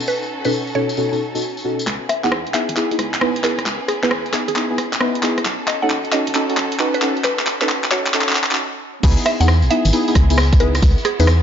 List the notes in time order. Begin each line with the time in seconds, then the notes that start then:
Already playing: C#4 D#4 F#4 A4
0.00 tambourine
0.08 B4, tambourine
0.23 tambourine
0.45 B2 C#4 D#4 F#4 A4 B4, tambourine
0.52 tambourine
0.67 tambourine
0.75 B2 C#4 D#4 F#4 A4 C#5
0.89 tambourine
0.97 B2 C#4 D#4 F#4 A4, tambourine
1.12 B2 C#4 D#4 F#4 A4, tambourine
1.35 B2 C#4 D#4 F#4 A4, tambourine
1.42 tambourine
1.57 tambourine
1.65 B2 C#4 D#4 F#4 A4
1.79 tambourine
1.87 C#2 B3 C#4 E4 G#4, clap, closed hi-hat
2.09 E5, cross-stick, open hi-hat
2.24 E2 B3 D#4 E4 G#4 F#5, clap
2.32 cross-stick
2.47 B1, closed hi-hat
2.54 B3 D#4 E4 G#4 E5, clap, open hi-hat
2.69 G#1, closed hi-hat
2.76 B3 D#4 E4 G#4, clap, closed hi-hat
2.91 B3 D#4 E4 G#4, open hi-hat
2.99 C#2, cross-stick, open hi-hat
3.14 clap, closed hi-hat
3.21 B3 D#4 E4 B4, cross-stick
3.36 closed hi-hat
3.44 B3 D#4 E4 G#4 B4, clap, open hi-hat
3.59 cross-stick, closed hi-hat
3.66 C#2, clap, closed hi-hat
3.88 G#4, cross-stick, open hi-hat
4.03 E2 B3 D#4 E4 G#4 B4, clap
4.11 cross-stick
4.26 B1, closed hi-hat
4.33 B3 D#4 E4 G#4, clap, open hi-hat
4.48 G#1 G#4, closed hi-hat
4.56 B3 D#4 E4 G#4, clap, closed hi-hat
4.71 B3 D#4 E4 G#4
4.78 cross-stick, open hi-hat
4.93 clap, closed hi-hat
5.00 B3 D#4 E4 B4, cross-stick
5.15 closed hi-hat
5.23 B3 D#4 E4 G#4, clap, open hi-hat
5.38 cross-stick, closed hi-hat
5.45 B1 C#4 D#4 F#4 A4, clap, closed hi-hat
5.68 D#5, clap, open hi-hat
5.82 D#2 C#4 D#4 F#4 A4 F#5
5.90 clap
6.05 A1, closed hi-hat
6.12 C#4 D#4 F#4 A4 D#5, clap, open hi-hat
6.27 F#1, closed hi-hat
6.35 C#4 D#4 F#4 A4, clap, closed hi-hat
6.50 C#4 D#4 F#4 A4, open hi-hat
6.57 B1, clap, open hi-hat
6.72 closed hi-hat
6.79 C#4 D#4 F#4 B4, clap
6.94 B4, closed hi-hat
7.02 C#4 D#4 F#4 A4, clap, open hi-hat
7.17 closed hi-hat
7.24 B1 B4, clap, closed hi-hat
7.39 clap
7.47 clap, open hi-hat
7.61 D#2 C#4 D#4 F#4 A4 B4, clap
7.69 clap
7.84 A1, clap, closed hi-hat
7.91 C#4 D#4 F#4 A4 C#5, clap, open hi-hat
8.06 F#1, clap, closed hi-hat
8.14 C#4 D#4 F#4 A4, clap, closed hi-hat
8.21 clap
8.29 C#4 D#4 F#4 A4, clap
8.32 F#1, clap
8.36 clap, open hi-hat
8.44 clap
8.51 C#4 D#4 F#4 A4, clap, closed hi-hat
8.55 clap
9.03 C#2 B3 D#4 E4 G#4, kick, closed hi-hat, crash, tambourine
9.18 tambourine
9.26 E5, cross-stick, open hi-hat
9.40 E2 B3 D#4 E4 G#4 F#5, tambourine
9.48 cross-stick, tambourine
9.62 B1, tambourine
9.71 B3 D#4 E4 G#4 E5, open hi-hat
9.85 G#1, closed hi-hat, tambourine
9.93 B3 D#4 E4 G#4, closed hi-hat, tambourine
10.08 B3 D#4 E4 G#4, open hi-hat, tambourine
10.15 C#2, kick, cross-stick, open hi-hat
10.30 B3 D#4 E4 G#4, closed hi-hat, tambourine
10.38 cross-stick, tambourine
10.53 kick, closed hi-hat, tambourine
10.60 B3 D#4 E4 G#4 B4, open hi-hat
10.75 cross-stick, closed hi-hat, tambourine
10.82 C#2 F#4, kick, closed hi-hat, tambourine
10.98 tambourine
11.05 G#4, cross-stick, open hi-hat
11.20 E2 B3 D#4 E4 G#4 B4, tambourine
11.27 cross-stick, tambourine